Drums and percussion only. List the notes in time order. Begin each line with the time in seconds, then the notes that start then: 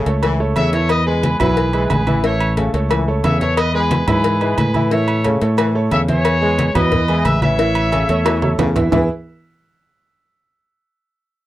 0.06 cowbell
0.23 cowbell, high conga, low agogo
0.40 high conga
0.56 cowbell, high conga, low agogo
0.73 cowbell
0.89 cowbell, high conga, low agogo
1.07 high conga
1.23 cowbell, high conga, low agogo
1.40 cowbell, high conga, low conga, low agogo
1.57 cowbell, high conga
1.73 high conga, low agogo
1.90 cowbell, high conga, low timbale, low agogo
2.07 high conga, low agogo
2.24 cowbell
2.40 high conga, low agogo
2.57 cowbell, high conga, low agogo
2.74 cowbell
2.91 cowbell, high conga, low agogo
3.08 high conga
3.24 cowbell, high conga, low timbale, low agogo
3.41 cowbell, high conga
3.57 cowbell, high conga, low agogo
3.75 high conga
3.91 cowbell, high conga, low agogo
4.08 cowbell, high conga, low conga, low agogo
4.24 cowbell, high conga
4.41 high conga, low agogo
4.58 cowbell, high conga, low agogo
4.74 high conga, low agogo
4.91 cowbell, high conga
5.08 high conga, low agogo
5.24 cowbell, high conga, low agogo
5.41 cowbell
5.58 cowbell, high conga, low agogo
5.76 high conga
5.91 cowbell, high conga, low agogo
6.08 cowbell, high conga
6.25 cowbell, high conga, low agogo
6.43 high conga
6.59 cowbell, high conga, low agogo
6.75 cowbell, high conga, low conga, low agogo
6.92 cowbell, high conga, low conga
7.08 high conga, low agogo
7.25 cowbell, high conga, low agogo
7.42 high conga, low agogo
7.59 cowbell
7.75 high conga, low agogo
7.92 cowbell, high conga, low agogo
8.09 cowbell
8.26 cowbell, high conga, high timbale, low agogo
8.42 high conga, high timbale
8.59 cowbell, low conga, low timbale, low agogo
8.76 cowbell, low conga, low timbale
8.92 low bongo, low conga, low timbale